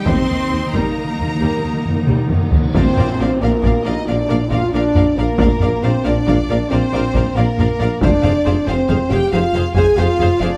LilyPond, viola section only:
\new Staff \with { instrumentName = "Viola section" } { \time 12/8 \key ees \mixolydian \tempo 4. = 91 << { ees'1~ ees'4. r8 | \key bes \mixolydian d''8 d''8 d''8 d''8 d''8 d''8 d''8 d''8 d''8 d''8 d''8 d''8 | d''8 d''8 d''8 d''8 d''8 d''8 d''8 d''8 d''8 d''8 d''8 d''8 | c''8 c''8 c''8 c''8 c''8 c''8 c''8 c''8 c''8 c''8 c''8 c''8 | } \\ { g8 ees8 ees8 g8 r8 ees8 g8 ees8 r8 g8 ees8 ees8 | bes'8 bes'8 bes'8 bes'8 bes'8 bes'8 bes'8 bes'8 bes'8 bes'8 bes'8 bes'8 | bes'8 bes'8 bes'8 bes'8 bes'8 bes'8 bes'8 bes'8 bes'8 bes'8 bes'8 bes'8 | aes'8 aes'8 aes'8 aes'8 aes'8 aes'8 aes'8 aes'8 aes'8 aes'8 aes'8 aes'8 | } >> }